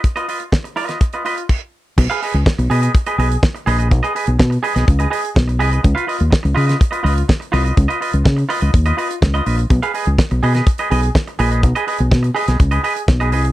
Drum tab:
CC |------------x---|x---------------|----------------|----------------|
HH |xxox-xoxxxox----|-xox-xoxxxox-xox|xxox-xoxxxox-xox|xxox-xoxxxox-xox|
SD |----o--o--------|----o-------o---|----o--o----o---|----o--o----o---|
BD |o---o---o---o---|o---o---o---o---|o---o---o---o---|o---o---o---o---|

CC |----------------|----------------|----------------|
HH |xxox-xoxxxox-xox|xxox-xoxxxox-xox|xxox-xoxxxox-xox|
SD |----o-------o---|----o--o----o---|----o--o----o---|
BD |o---o---o---o---|o---o---o---o---|o---o---o---o---|